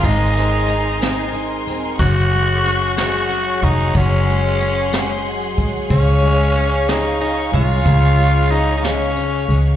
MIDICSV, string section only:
0, 0, Header, 1, 2, 480
1, 0, Start_track
1, 0, Tempo, 652174
1, 29, Time_signature, 6, 3, 24, 8
1, 7186, End_track
2, 0, Start_track
2, 0, Title_t, "String section"
2, 0, Program_c, 0, 48
2, 0, Note_on_c, 0, 70, 74
2, 0, Note_on_c, 0, 75, 64
2, 0, Note_on_c, 0, 80, 65
2, 0, Note_on_c, 0, 84, 78
2, 1436, Note_off_c, 0, 70, 0
2, 1437, Note_off_c, 0, 75, 0
2, 1437, Note_off_c, 0, 84, 0
2, 1439, Note_off_c, 0, 80, 0
2, 1471, Note_on_c, 0, 78, 71
2, 1472, Note_on_c, 0, 68, 74
2, 1472, Note_on_c, 0, 85, 83
2, 1473, Note_on_c, 0, 73, 62
2, 2896, Note_off_c, 0, 85, 0
2, 2911, Note_on_c, 0, 84, 81
2, 4321, Note_off_c, 0, 78, 0
2, 4336, Note_off_c, 0, 84, 0
2, 4352, Note_on_c, 0, 77, 64
2, 4361, Note_on_c, 0, 85, 73
2, 7186, Note_off_c, 0, 68, 0
2, 7186, Note_off_c, 0, 73, 0
2, 7186, Note_off_c, 0, 77, 0
2, 7186, Note_off_c, 0, 85, 0
2, 7186, End_track
0, 0, End_of_file